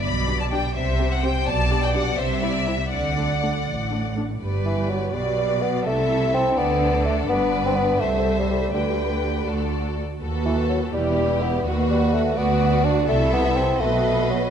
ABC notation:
X:1
M:6/8
L:1/16
Q:3/8=83
K:G
V:1 name="Violin section"
b3 a g2 e3 f g2 | a3 g f2 c2 d2 e2 | f8- f2 z2 | d6 B6 |
e6 d6 | d6 e6 | g6 d4 z2 | [K:Bphr] B6 B6 |
B6 d6 | e6 ^d6 |]
V:2 name="Violin section"
d6 c6 | d6 e6 | d8- d z3 | B6 d6 |
A6 A6 | B6 c6 | B6 A4 z2 | [K:Bphr] A6 G6 |
F6 F6 | A6 B6 |]
V:3 name="Viola section"
z2 [DG]2 [DG]2 z2 [CG]2 [CG]2 | z2 [DG]2 [DG]2 z2 [CE]2 [CE]2 | z2 [A,D]2 [A,D]2 z2 [A,D]2 [A,D]2 | G6 F6 |
E6 D6- | D6 A6 | G6 F4 z2 | [K:Bphr] F6 E6 |
F6 F6 | E6 F6 |]
V:4 name="Bassoon"
z12 | z12 | z12 | z2 E,2 F,2 G,4 B,2 |
A,4 C2 B,4 A,2 | B,3 C B,2 A,3 G, G,2 | D,8- D,2 z2 | [K:Bphr] z2 E,2 F,2 G,4 B,2 |
z2 G,2 A,2 B,4 D2 | A,2 B,2 C2 A,4 F,2 |]
V:5 name="Cello section" clef=bass
B,,6 C,6 | B,,6 C,6 | D,6 A,,6 | G,,6 B,,6 |
C,6 D,6 | G,,6 C,,6 | D,,6 D,,4 z2 | [K:Bphr] ^D,,6 E,,6 |
^D,,6 =D,,6 | C,6 B,,6 |]
V:6 name="Double bass section" clef=bass
B,,,6 C,,6 | B,,,6 C,,6 | D,,6 A,,,6 | G,,,6 B,,,6 |
C,,6 D,,6 | G,,,6 C,,6 | D,,6 D,,4 z2 | [K:Bphr] ^D,,6 E,,,6 |
^D,,6 =D,,6 | C,,6 B,,,6 |]